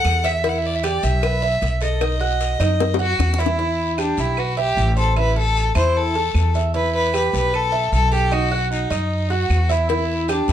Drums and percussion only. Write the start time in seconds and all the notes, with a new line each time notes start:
0.05 cowbell, short guiro, claves
0.24 cowbell, short guiro
0.44 cowbell, long guiro
0.83 cowbell, short guiro, claves
1.03 cowbell, short guiro
1.22 cowbell, long guiro, claves
1.61 cowbell, short guiro
1.81 short guiro
2.01 cowbell, long guiro, claves
2.41 cowbell, short guiro
2.60 cowbell, short guiro, claves
2.80 cowbell, high bongo, long guiro
2.94 high bongo
3.19 cowbell, low bongo, short guiro, claves
3.34 low bongo
3.39 cowbell, short guiro
3.46 low bongo
3.59 long guiro
3.98 short guiro, claves
4.17 short guiro
4.37 long guiro, claves
4.77 short guiro
4.97 short guiro
5.17 long guiro, claves
5.56 short guiro
5.75 short guiro, claves
5.96 long guiro
6.35 short guiro, claves
6.54 short guiro
6.75 long guiro
7.14 short guiro, claves
7.34 short guiro
7.54 long guiro, claves
7.93 short guiro
8.12 short guiro
8.32 long guiro, claves
8.72 short guiro
8.91 short guiro, claves
9.11 long guiro
9.50 short guiro, claves
9.70 short guiro
9.89 cowbell, long guiro
10.28 cowbell, short guiro, claves
10.48 cowbell, short guiro